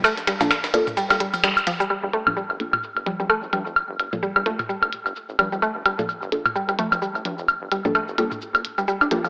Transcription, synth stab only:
X:1
M:4/4
L:1/16
Q:"Swing 16ths" 1/4=129
K:Gm
V:1 name="Synth stab"
z3 [B,DFA] z2 [B,DFA] z8 z | z3 [B,DFA] z2 [B,DFA] z8 z | z3 [B,DFA] z2 [B,DFA] z8 z | z3 [B,DFA] z2 [B,DFA] z8 z |
z3 [B,DFA] z2 [B,DFA] z6 z [B,DFA] z |]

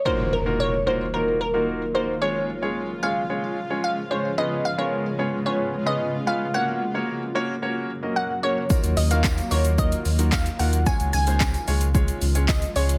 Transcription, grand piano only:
X:1
M:4/4
L:1/16
Q:1/4=111
K:Ebm
V:1 name="Grand piano"
[B,EFGB]2 z [B,EFGB]2 z [B,EFGB] z [B,EFGB]2 z [B,EFGB]2 z [B,EFGB] z | [A,DFAd]2 z [A,DFAd]2 z [A,DFAd] z [A,DFAd]2 z [A,DFAd]2 z [A,DFA=c] z | [CDFAc]2 z [CDFAB]2 z [CDFAd] z [CDFAc]2 z [CDFAc]2 z [CDFAc] z | [B,DGBd]2 z [B,DGBd]2 z [B,DGBd] z [B,DGBd]2 z [B,DGBe]2 z [B,DGBd] z |
[B,EFGB]2 z [B,EFGB]2 z [B,EFGB] z [B,EFGB]2 z [B,EFGB]2 z [B,EFGB] z | [A,DFAd]2 z [A,DFA=c]2 z [A,DFAd] z [A,DFAd]2 z [A,DFAd]2 z [A,DFAd] z |]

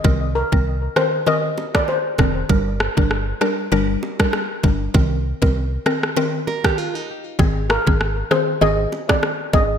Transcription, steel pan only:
X:1
M:4/4
L:1/16
Q:"Swing 16ths" 1/4=98
K:Cm
V:1 name="Steel pan"
z2 B z3 c z e z2 d c3 z | z16 | z16 | z2 B z3 c z e z2 d z2 e z |]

